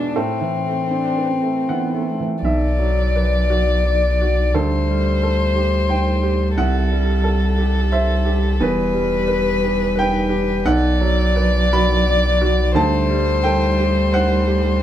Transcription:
0.00 0.11 E2 medium
0.00 0.17 B2 soft
0.00 0.17 G#3 soft
0.00 0.17 B3 soft
0.00 0.16 D4 medium
0.00 0.18 D4 medium
0.00 0.17 B4 medium
0.00 0.17 E5 medium
0.15 2.41 A2 soft
0.15 0.83 C4 soft
0.15 2.24 C4 soft
0.15 1.66 A4 medium
0.41 0.81 E3 soft
0.66 1.07 A3 soft
0.91 1.32 C4 soft
0.91 1.30 D4 medium
1.17 1.59 B4 soft
1.29 1.72 C4 soft
1.43 1.85 A3 soft
1.69 2.10 E3 soft
1.69 2.09 B3 soft
1.69 2.39 F#5 medium
1.94 2.34 A3 soft
2.07 2.43 A3 soft
2.20 2.44 E3 soft
2.42 4.55 B1 medium
2.42 4.50 B1 soft
2.42 4.50 F#3 soft
2.42 4.56 D5 soft
2.42 3.81 E5 medium
2.79 3.35 F#3 soft
3.15 3.71 B4 soft
3.50 4.06 F#4 soft
3.84 4.40 D5 soft
4.21 4.55 F#4 soft
4.53 6.59 D2 medium
4.53 6.54 D2 soft
4.53 8.58 G3 medium
4.53 5.22 A4 medium
4.53 6.57 C5 medium
4.89 5.43 G3 soft
5.23 5.76 A4 soft
5.56 6.10 G4 soft
5.89 6.43 C5 soft
5.89 6.54 G5 medium
6.23 6.57 G4 soft
6.57 8.58 C2 medium
6.57 8.63 C2 medium
6.57 8.62 A4 medium
6.57 7.89 F#5 medium
6.92 7.46 G3 soft
7.24 7.79 A4 soft
7.58 8.13 G4 soft
7.92 8.47 C5 medium
7.92 8.57 E5 medium
8.25 8.61 G4 medium
8.60 10.67 E1 medium
8.60 10.61 E2 medium
8.60 10.68 G3 medium
8.60 10.68 B4 medium
8.60 9.26 B4 medium
8.94 9.49 G3 soft
9.28 9.83 B4 medium
9.63 10.18 G4 medium
9.96 10.51 B4 medium
9.96 10.62 G5 medium
10.29 10.65 G4 medium
10.65 12.72 B1 medium
10.65 12.77 B1 medium
10.65 12.78 F#3 medium
10.65 12.76 D5 medium
10.65 11.69 F#5 loud
11.01 11.58 F#3 medium
11.36 11.93 B4 medium
11.73 12.28 F#4 medium
11.73 12.72 B5 loud
12.07 12.62 D5 medium
12.41 12.76 F#4 medium
12.75 14.79 D2 medium
12.75 14.83 D2 medium
12.75 14.83 G3 medium
12.75 14.80 C5 medium
12.75 13.41 A5 loud
13.10 13.66 G3 medium
13.43 14.00 A4 medium
13.43 14.09 G5 medium
13.80 14.35 G4 medium
14.13 14.68 C5 medium
14.13 14.79 F#5 medium
14.47 14.83 G4 medium

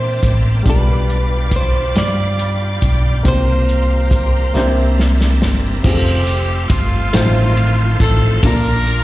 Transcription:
0.00 0.19 A#2 medium
0.00 0.69 C3 medium
0.00 0.62 E3 medium
0.00 0.61 A#3 soft
0.00 0.65 A#3 medium
0.00 0.62 C4 medium
0.00 0.62 D4 soft
0.00 0.62 E4 medium
0.00 0.63 G4 soft
0.00 0.31 C5 medium
0.00 0.63 C5 medium
0.00 0.64 E5 medium
0.00 0.63 G5 medium
0.00 0.62 C6 medium
0.00 0.61 D6 medium
0.23 0.63 A1 medium
0.23 kick medium
0.23 closed hi-hat medium
0.63 1.92 B1 medium
0.63 1.92 B2 medium
0.63 3.20 G3 medium
0.63 3.21 D4 soft
0.63 3.21 F4 soft
0.63 3.22 F4 soft
0.63 4.51 G5 medium
0.63 3.23 B5 medium
0.63 kick medium
0.63 closed hi-hat medium
0.67 3.22 G3 medium
0.67 3.22 D4 soft
0.67 3.22 G4 medium
0.67 1.56 B4 medium
0.67 3.22 D5 medium
0.67 3.22 F5 medium
0.67 3.23 D6 medium
1.09 closed hi-hat soft
1.51 kick medium
1.51 closed hi-hat medium
1.56 1.95 C5 medium
1.96 2.78 G2 medium
1.96 3.23 D5 medium
1.96 snare medium
1.96 closed hi-hat medium
2.39 closed hi-hat soft
2.82 3.22 B1 medium
2.82 kick medium
2.82 closed hi-hat medium
3.23 4.51 C2 medium
3.23 4.50 C3 soft
3.23 4.55 G3 medium
3.23 4.53 A#3 medium
3.23 4.54 C4 soft
3.23 4.54 F4 soft
3.23 4.55 F4 soft
3.23 4.55 G4 soft
3.23 3.32 A4 soft
3.23 4.55 C5 medium
3.23 4.52 F5 medium
3.23 5.81 A#5 medium
3.23 5.81 C6 medium
3.23 kick medium
3.23 closed hi-hat medium
3.28 4.95 C5 medium
3.33 4.54 A#4 medium
3.69 closed hi-hat soft
4.11 kick medium
4.11 closed hi-hat medium
4.54 5.37 C2 medium
4.54 5.81 C3 medium
4.54 5.85 E3 medium
4.54 5.84 A#3 medium
4.54 5.83 C4 medium
4.54 5.84 D4 medium
4.54 5.85 D4 medium
4.54 5.84 E4 medium
4.54 5.85 G4 medium
4.54 5.85 A#4 medium
4.54 5.85 C5 medium
4.54 5.83 D5 medium
4.54 5.83 E5 medium
4.54 snare soft
4.99 snare medium
5.21 snare medium
5.41 5.81 G1 medium
5.41 snare medium
5.83 6.67 F1 loud
5.83 7.14 A3 medium
5.83 7.12 C4 medium
5.83 7.13 C4 medium
5.83 6.70 C4 medium
5.83 7.13 F4 medium
5.83 6.68 G4 medium
5.83 5.91 G#4 medium
5.83 kick loud
5.83 crash medium
5.83 tambourine soft
5.92 7.18 A4 medium
6.27 ride bell soft
6.27 tambourine medium
6.70 7.10 G1 medium
6.70 7.96 C4 medium
6.70 8.00 F4 medium
6.70 kick medium
6.70 ride bell medium
7.13 7.96 A1 medium
7.13 8.39 A2 medium
7.13 8.44 D#3 medium
7.13 8.44 F3 medium
7.13 8.43 A3 medium
7.13 8.44 A3 medium
7.13 8.43 C4 medium
7.13 8.44 D#4 medium
7.13 8.44 F4 medium
7.13 8.44 C5 medium
7.13 snare loud
7.13 ride bell medium
7.13 tambourine medium
7.57 ride bell soft
8.00 8.40 A1 medium
8.00 8.41 A4 loud
8.00 kick medium
8.00 ride bell medium
8.00 tambourine medium
8.43 9.04 A#1 loud
8.43 9.04 A#2 medium
8.43 9.04 A#3 medium
8.43 9.04 D4 medium
8.43 9.04 F4 medium
8.43 9.04 A#4 loud
8.43 9.04 A#4 medium
8.43 kick loud
8.43 ride bell medium
8.43 tambourine medium
8.87 ride bell soft
8.87 tambourine medium

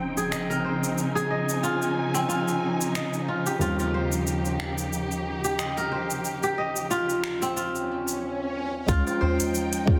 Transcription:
0.00 3.57 C#3 medium
0.00 8.18 C#3 medium
0.00 8.19 F3 medium
0.00 3.57 C4 medium
0.00 3.58 C4 medium
0.00 8.19 D#4 medium
0.00 3.59 F4 medium
0.00 0.95 G5 medium
0.00 impact medium
0.17 1.15 G#4 medium
0.17 shaker medium
0.31 1.30 D#5 medium
0.31 finger snap medium
0.31 shaker soft
0.50 1.77 A#4 medium
0.50 shaker soft
0.64 1.83 C5 medium
0.84 shaker medium
0.97 3.59 G#5 medium
0.97 shaker soft
1.15 2.52 G#4 medium
1.15 shaker soft
1.30 2.37 D#5 medium
1.49 shaker medium
1.63 2.28 F4 medium
1.63 shaker soft
1.82 shaker soft
2.14 3.94 C4 medium
2.14 shaker medium
2.29 3.28 F4 medium
2.29 shaker soft
2.48 shaker soft
2.81 shaker medium
2.95 4.03 D#5 medium
2.95 finger snap medium
2.95 shaker medium
3.14 shaker soft
3.28 3.61 F4 medium
3.46 4.88 G4 medium
3.46 shaker medium
3.59 8.84 D#2 medium
3.59 8.85 G3 medium
3.59 8.85 C4 medium
3.59 3.79 F4 medium
3.59 8.86 F4 medium
3.59 8.19 G4 medium
3.59 shaker soft
3.79 5.31 F4 medium
3.79 shaker soft
3.94 5.13 C5 medium
4.12 shaker medium
4.27 shaker medium
4.45 shaker soft
4.60 finger snap medium
4.78 shaker medium
4.93 shaker soft
5.11 shaker soft
5.44 6.43 G4 medium
5.44 shaker medium
5.59 6.58 D#5 medium
5.59 finger snap medium
5.59 shaker medium
5.77 7.05 A#4 medium
5.77 shaker soft
5.92 7.10 C5 medium
6.11 shaker medium
6.25 shaker soft
6.43 7.85 G4 medium
6.43 shaker soft
6.58 7.65 D#5 medium
6.76 shaker medium
6.91 7.56 F4 medium
6.91 shaker soft
7.10 shaker soft
7.24 finger snap medium
7.42 9.22 C4 medium
7.42 shaker medium
7.56 8.88 F4 medium
7.56 swell medium
7.56 shaker medium
7.75 shaker soft
8.08 shaker medium
8.86 9.02 C#2 loud
8.86 10.00 F3 medium
8.86 9.83 G#3 medium
8.86 9.84 C#4 medium
8.86 10.00 D#4 medium
8.86 9.06 F4 loud
8.86 9.85 F4 medium
8.86 10.00 G5 medium
8.86 kick loud
8.86 shaker medium
9.07 10.00 F4 medium
9.07 tabla na medium
9.07 shaker soft
9.21 10.00 C5 medium
9.21 tabla na medium
9.21 tabla ge medium
9.40 closed hi-hat medium
9.40 tabla ge medium
9.40 shaker medium
9.55 shaker medium
9.73 closed hi-hat soft
9.73 shaker soft
9.85 10.00 G#3 medium
9.85 10.00 C#4 medium
9.85 kick loud
9.89 10.00 F4 medium

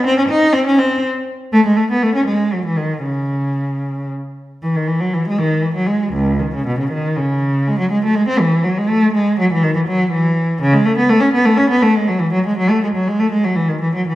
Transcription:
0.06 0.17 C4 medium
0.18 0.22 C#4 medium
0.29 0.53 D#4 medium
0.53 0.65 C4 medium
0.66 0.78 C#4 medium
0.79 1.03 C4 medium
1.53 1.64 A3 medium
1.66 1.77 G#3 medium
1.77 1.89 A3 medium
1.91 2.03 B3 medium
2.02 2.15 A3 medium
2.15 2.27 C#4 medium
2.27 2.52 G#3 medium
2.53 2.66 F#3 medium
2.65 2.78 E3 medium
2.77 3.04 D#3 medium
3.04 4.08 C#3 medium
4.63 4.75 E3 medium
4.76 4.89 D#3 medium
4.87 5.01 E3 medium
5.00 5.13 F#3 medium
5.14 5.26 E3 medium
5.27 5.39 G#3 medium
5.38 5.64 D#3 medium
5.62 5.75 E3 medium
5.74 5.88 F#3 medium
5.87 6.14 G#3 medium
6.14 6.40 C#2 medium
6.39 6.53 D#3 medium
6.54 6.67 C#3 medium
6.67 6.79 B2 medium
6.79 6.91 C#3 medium
6.92 7.17 D#3 medium
7.17 7.67 C#3 medium
7.67 7.79 G#3 medium
7.79 7.91 F#3 medium
7.91 8.03 G#3 medium
8.04 8.16 A3 medium
8.15 8.28 G#3 medium
8.28 8.40 C4 medium
8.39 8.64 E3 medium
8.64 8.76 F#3 medium
8.78 8.89 G#3 medium
8.89 9.14 A3 medium
9.14 9.38 G#3 medium
9.39 9.51 F#3 medium
9.52 9.63 E3 medium
9.63 9.75 D#3 medium
9.75 9.80 E3 medium
9.88 10.11 F#3 medium
10.12 10.59 E3 medium
10.61 10.73 C#3 loud
10.73 10.85 G#3 medium
10.85 10.97 A3 medium
10.97 11.09 B3 medium
11.09 11.21 A3 medium
11.21 11.33 C#4 medium
11.33 11.45 B3 medium
11.45 11.57 A3 medium
11.57 11.70 C#4 medium
11.70 11.82 B3 medium
11.82 11.94 A3 medium
11.96 12.08 G#3 medium
12.08 12.20 F#3 medium
12.20 12.32 E3 medium
12.33 12.44 F#3 medium
12.46 12.57 G#3 medium
12.58 12.69 F#3 medium
12.70 12.82 A3 medium
12.83 12.87 G#3 medium
12.95 13.07 F#3 medium
13.08 13.19 G#3 medium
13.20 13.32 A3 medium
13.31 13.44 G#3 medium
13.44 13.57 F#3 medium
13.55 13.68 E3 medium
13.68 13.81 D#3 medium
13.81 13.94 E3 medium
13.95 14.07 F#3 medium
14.07 14.15 E3 medium

